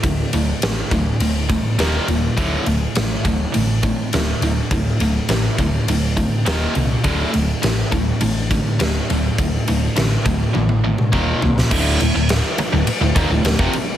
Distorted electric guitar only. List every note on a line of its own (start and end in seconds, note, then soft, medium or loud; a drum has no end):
0.03 0.31 D2 medium
0.03 0.30 A2 medium
0.34 0.60 D2 medium
0.34 0.60 A2 medium
0.63 0.89 D2 medium
0.63 0.90 A2 medium
0.92 1.18 D2 medium
0.92 1.18 A2 medium
1.21 1.47 D2 medium
1.21 1.47 A2 medium
1.50 1.76 D2 medium
1.50 1.76 A2 medium
1.79 2.07 D#2 medium
1.79 2.07 A#2 medium
1.79 2.07 D#3 loud
2.08 2.35 D#2 medium
2.08 2.35 A#2 medium
2.37 2.65 D2 medium
2.37 2.65 A2 loud
2.37 2.65 D3 loud
2.66 2.93 D2 medium
2.66 2.93 A2 medium
2.96 3.22 D2 medium
2.96 3.22 A2 medium
3.25 3.51 D2 medium
3.25 3.52 A2 medium
3.54 3.80 D2 medium
3.54 3.80 A2 medium
3.83 4.10 D2 medium
3.83 4.10 A2 medium
4.14 4.40 D2 medium
4.14 4.40 A2 medium
4.43 4.69 D2 medium
4.43 4.69 A2 medium
4.72 4.98 D2 medium
4.72 4.98 A2 medium
5.01 5.27 D2 medium
5.01 5.27 A2 medium
5.28 5.55 D2 medium
5.28 5.56 A2 medium
5.59 5.85 D2 medium
5.59 5.85 A2 medium
5.89 6.15 D2 medium
5.89 6.15 A2 medium
6.17 6.43 D2 medium
6.17 6.43 A2 medium
6.46 6.73 D#2 loud
6.46 6.74 A#2 medium
6.46 6.74 D#3 loud
6.74 7.01 D#2 medium
6.74 7.02 A#2 medium
7.04 7.31 D2 medium
7.04 7.32 A2 loud
7.04 7.32 D3 loud
7.32 7.59 D2 medium
7.32 7.60 A2 medium
7.62 7.89 D2 medium
7.62 7.89 A2 medium
7.92 8.18 D2 medium
7.92 8.19 A2 medium
8.21 8.47 D2 medium
8.21 8.48 A2 medium
8.51 8.77 D2 medium
8.51 8.77 A2 medium
8.79 9.06 D2 medium
8.79 9.06 A2 medium
9.10 9.35 D2 medium
9.10 9.36 A2 medium
9.39 9.65 D2 medium
9.39 9.65 A2 medium
9.68 9.94 D2 medium
9.68 9.94 A2 medium
9.96 10.22 D2 medium
9.96 10.22 A2 medium
10.25 10.51 D2 medium
10.25 10.52 A2 medium
10.54 10.80 D2 medium
10.54 10.80 A2 medium
10.84 11.10 D2 medium
10.84 11.10 A2 medium
11.12 11.39 D#2 medium
11.12 11.40 A#2 medium
11.12 11.40 D#3 loud
11.43 11.68 D#2 medium
11.43 11.68 A#2 medium
11.71 11.99 D2 loud
11.71 11.99 A2 loud
11.71 12.00 D3 loud
12.01 12.14 D2 medium
12.01 12.14 A2 medium
12.15 12.38 D2 medium
12.15 12.38 A2 medium
12.59 muted distorted electric guitar stroke medium
12.73 12.86 D2 medium
12.73 12.87 A2 medium
12.87 muted distorted electric guitar stroke medium
13.02 13.15 D2 medium
13.02 13.16 A2 medium
13.16 13.29 D#2 medium
13.16 13.30 A#2 loud
13.31 13.44 D2 medium
13.31 13.45 A2 medium
13.45 13.59 D2 medium
13.45 13.60 A2 medium
13.60 13.73 F2 medium
13.60 13.73 C3 loud
13.75 muted distorted electric guitar stroke medium